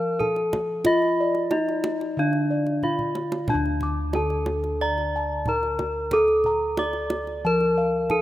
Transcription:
0.00 1.47 F3 medium
0.00 0.15 F4 medium
0.00 0.20 A#4 medium
0.00 0.23 F5 soft
0.20 0.28 D#4 soft
0.20 0.86 A4 medium
0.20 0.57 A5 soft
0.20 kendang low medium
0.36 kendang slap soft
0.53 kendang high medium
0.53 kendang low medium
0.84 2.79 F4 medium
0.84 1.52 F4 medium
0.84 1.23 D#5 medium
0.84 kendang low medium
1.02 kendang slap soft
1.20 1.56 D5 medium
1.35 kendang slap soft
1.51 1.59 D#4 soft
1.51 2.18 D#4 medium
1.51 1.89 D#5 soft
1.51 kendang high medium
1.69 kendang slap soft
1.84 kendang high medium
2.01 kendang slap soft
2.17 4.11 D3 medium
2.17 2.84 D4 medium
2.17 2.55 F5 medium
2.33 kendang slap soft
2.51 2.87 D5 soft
2.67 kendang slap soft
2.83 2.91 D#4 soft
2.83 3.49 F4 medium
2.83 3.21 F5 soft
2.83 kendang low soft
2.99 kendang low soft
3.15 kendang high soft
3.32 kendang high medium
3.48 4.16 D4 medium
3.48 5.43 D4 medium
3.48 3.86 A5 medium
3.48 kendang low medium
3.54 7.43 D2 loud
3.65 kendang slap soft
3.81 4.19 D6 medium
3.81 kendang low medium
4.13 4.24 D#4 soft
4.13 4.81 A4 medium
4.13 4.52 A5 soft
4.13 kendang high medium
4.30 kendang slap soft
4.46 kendang high medium
4.64 kendang slap soft
4.81 5.47 D5 medium
4.81 5.19 A#5 medium
4.98 kendang slap soft
5.16 5.52 A5 medium
5.46 5.56 D#4 soft
5.46 6.14 A#4 medium
5.46 5.84 A#5 soft
5.46 kendang low medium
5.63 kendang slap soft
5.79 kendang high soft
5.79 kendang low medium
6.11 6.79 A4 medium
6.11 8.07 A4 medium
6.11 6.50 D6 medium
6.11 kendang low medium
6.28 kendang slap soft
6.44 6.83 A#5 medium
6.44 kendang low soft
6.77 6.86 D#4 soft
6.77 7.45 D5 medium
6.77 7.16 D6 medium
6.77 kendang high medium
6.93 kendang slap soft
7.10 kendang high soft
7.27 kendang slap soft
7.45 8.22 F3 medium
7.45 8.12 A#4 medium
7.45 7.82 A5 medium
7.60 kendang slap soft
7.78 8.15 F5 medium
8.10 8.18 D#4 soft
8.10 8.22 A4 medium
8.10 8.22 A5 medium
8.10 kendang low medium

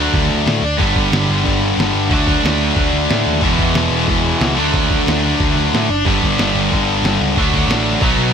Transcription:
0.00 0.62 D3 loud
0.00 0.63 D3 medium
0.00 0.62 F#3 loud
0.00 0.63 A3 medium
0.00 0.63 A3 loud
0.00 0.81 D4 loud
0.00 2.10 D4 medium
0.14 0.27 D2 medium
0.14 kick loud
0.14 crash medium
0.31 0.43 D2 medium
0.31 crash medium
0.46 0.59 A2 loud
0.46 snare loud
0.46 crash medium
0.62 0.75 D2 medium
0.62 crash medium
0.79 0.93 G1 loud
0.79 1.41 G2 medium
0.79 1.44 D3 loud
0.79 1.45 G3 loud
0.79 2.11 B3 loud
0.79 2.11 D4 loud
0.79 kick loud
0.79 crash medium
0.96 1.09 G1 loud
0.96 kick medium
0.96 crash medium
1.12 1.25 G1 loud
1.12 snare loud
1.12 crash loud
1.29 1.42 G1 medium
1.29 crash medium
1.42 1.71 G1 loud
1.42 2.09 G2 medium
1.42 2.07 D3 medium
1.42 2.10 G3 medium
1.42 kick loud
1.42 crash medium
1.63 crash medium
1.78 1.91 G1 medium
1.78 snare loud
1.78 crash loud
1.95 2.08 G1 medium
1.95 crash medium
2.08 2.36 D2 loud
2.08 2.73 D3 medium
2.08 3.42 F#3 medium
2.08 2.74 A3 loud
2.08 2.76 D4 loud
2.08 kick loud
2.08 crash loud
2.27 kick medium
2.27 crash medium
2.44 2.69 D2 loud
2.44 snare loud
2.44 crash loud
2.61 crash medium
2.74 2.89 D2 loud
2.74 3.40 D3 medium
2.74 3.41 A3 loud
2.74 3.42 D4 medium
2.74 kick loud
2.74 crash medium
2.93 3.06 D2 medium
2.93 crash medium
3.09 3.23 A2 medium
3.09 snare loud
3.09 crash medium
3.25 3.39 D#2 medium
3.25 crash medium
3.40 3.55 E1 loud
3.40 4.06 E2 loud
3.40 4.07 B2 loud
3.40 4.07 E3 loud
3.40 4.57 G#3 medium
3.40 4.57 B3 medium
3.40 kick loud
3.40 crash medium
3.45 4.58 E4 loud
3.58 3.71 E1 loud
3.58 kick medium
3.58 crash medium
3.74 3.88 E1 loud
3.74 snare loud
3.74 crash medium
3.91 4.04 E1 medium
3.91 crash medium
4.07 4.33 E1 medium
4.07 4.56 E2 medium
4.07 4.55 B2 medium
4.07 4.57 E3 medium
4.07 kick loud
4.07 crash medium
4.24 crash medium
4.40 4.54 C#2 loud
4.40 snare loud
4.40 crash medium
4.56 4.70 D2 medium
4.56 5.21 D3 loud
4.56 5.88 F#3 loud
4.56 5.22 A3 medium
4.56 5.22 D4 loud
4.56 crash medium
4.74 4.99 D2 medium
4.74 kick loud
4.74 crash loud
4.90 kick medium
4.90 crash medium
5.07 5.32 D2 loud
5.07 snare loud
5.07 crash loud
5.23 5.89 D3 medium
5.23 5.88 A3 medium
5.23 7.38 D4 loud
5.23 crash medium
5.40 5.53 D2 medium
5.40 kick loud
5.40 crash loud
5.56 5.69 D2 medium
5.56 crash medium
5.74 5.86 A2 loud
5.74 snare loud
5.74 crash medium
5.90 6.02 F#1 loud
5.90 crash medium
6.05 6.19 G1 loud
6.05 6.70 G2 loud
6.05 6.71 D3 loud
6.05 6.71 G3 loud
6.05 7.37 B3 loud
6.05 7.37 D4 loud
6.05 kick loud
6.05 crash loud
6.22 6.35 G1 loud
6.22 kick medium
6.22 crash medium
6.38 6.51 G1 loud
6.38 snare loud
6.38 crash loud
6.55 6.67 G1 medium
6.55 crash medium
6.72 6.97 G1 medium
6.72 7.36 G2 medium
6.72 7.35 D3 medium
6.72 7.37 G3 medium
6.72 kick loud
6.72 crash medium
6.88 crash medium
7.03 7.16 G1 medium
7.03 snare loud
7.03 crash loud
7.20 7.32 C#2 loud
7.20 crash medium
7.36 7.62 D2 loud
7.36 8.00 D3 loud
7.36 8.01 F#3 loud
7.36 8.01 A3 loud
7.36 8.02 D4 loud
7.36 kick loud
7.36 crash loud
7.54 kick medium
7.54 crash medium
7.68 7.93 A1 loud
7.68 snare loud
7.68 crash loud
7.87 crash medium
8.00 8.14 B1 medium
8.00 8.33 B2 medium
8.00 8.33 F#3 loud
8.00 8.33 B3 loud
8.00 kick loud
8.00 crash loud
8.06 8.33 D#4 loud
8.18 8.31 B1 loud
8.18 crash medium

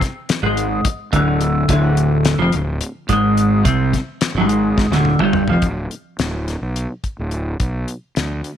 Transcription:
0.01 muted fingered electric bass stroke soft
0.01 muted clean electric guitar stroke medium
0.01 kick medium
0.01 snare soft
0.01 closed hi-hat medium
0.29 snare loud
0.29 closed hi-hat loud
0.43 0.82 G#1 medium
0.43 0.85 G#2 medium
0.57 closed hi-hat medium
0.85 muted fingered electric bass stroke soft
0.85 muted clean electric guitar stroke medium
0.85 kick loud
0.85 closed hi-hat loud
1.13 1.65 D1 medium
1.13 1.68 D2 loud
1.13 kick medium
1.13 closed hi-hat medium
1.41 closed hi-hat medium
1.69 2.36 D1 medium
1.69 2.38 D2 loud
1.69 kick loud
1.69 closed hi-hat loud
1.97 closed hi-hat medium
2.25 snare loud
2.25 closed hi-hat loud
2.38 2.52 F1 medium
2.38 2.53 F2 loud
2.52 2.80 D1 medium
2.52 2.76 D2 medium
2.52 closed hi-hat medium
2.81 closed hi-hat medium
3.09 3.62 G#1 medium
3.09 3.64 G#2 medium
3.09 kick medium
3.09 closed hi-hat medium
3.37 closed hi-hat medium
3.65 3.92 C2 medium
3.65 3.93 C3 loud
3.65 kick loud
3.65 closed hi-hat medium
3.93 muted fingered electric bass stroke soft
3.93 muted clean electric guitar stroke medium
3.93 kick medium
3.93 snare soft
3.93 closed hi-hat medium
4.21 snare loud
4.21 closed hi-hat medium
4.34 4.88 G#1 medium
4.34 4.92 G#2 medium
4.49 closed hi-hat medium
4.78 kick loud
4.78 snare medium
4.91 5.18 D1 medium
4.91 5.20 D2 medium
4.91 snare medium
5.05 high tom medium
5.19 5.47 G1 medium
5.19 5.49 G2 loud
5.19 mid tom medium
5.33 mid tom medium
5.48 5.62 F1 medium
5.48 5.63 F2 medium
5.48 floor tom medium
5.62 5.86 D1 medium
5.62 kick loud
5.62 closed hi-hat medium
5.91 closed hi-hat medium
6.19 6.55 D1 medium
6.19 snare loud
6.19 closed hi-hat medium
6.48 snare soft
6.48 closed hi-hat medium
6.62 6.85 B1 medium
6.76 closed hi-hat medium
7.04 kick medium
7.04 closed hi-hat soft
7.19 7.54 D1 medium
7.31 closed hi-hat medium
7.60 7.84 B1 medium
7.60 kick loud
7.60 closed hi-hat medium
7.88 closed hi-hat medium
8.16 8.40 D2 medium
8.16 snare medium
8.16 closed hi-hat medium
8.44 closed hi-hat medium

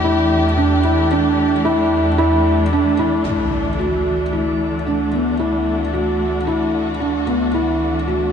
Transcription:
0.00 3.23 E2 medium
0.00 8.32 E3 medium
0.00 8.32 A3 medium
0.00 8.32 D4 medium
0.00 3.25 G4 medium
0.04 0.46 E4 medium
0.57 0.78 D4 medium
0.85 1.05 E4 medium
1.11 1.53 D4 medium
1.65 2.06 E4 medium
2.18 2.60 E4 medium
2.73 2.93 D4 medium
2.99 3.20 E4 medium
3.25 8.32 D2 medium
3.25 3.67 E4 medium
3.25 impact medium
3.79 4.21 F#4 medium
4.33 4.74 E4 medium
4.78 8.32 F#4 medium
4.86 5.07 D4 medium
5.13 5.34 B3 medium
5.39 5.81 E4 medium
5.93 6.35 F#4 medium
6.47 6.88 E4 medium
7.00 7.21 D4 medium
7.27 7.48 B3 medium
7.54 7.96 E4 medium
8.08 8.32 F#4 medium

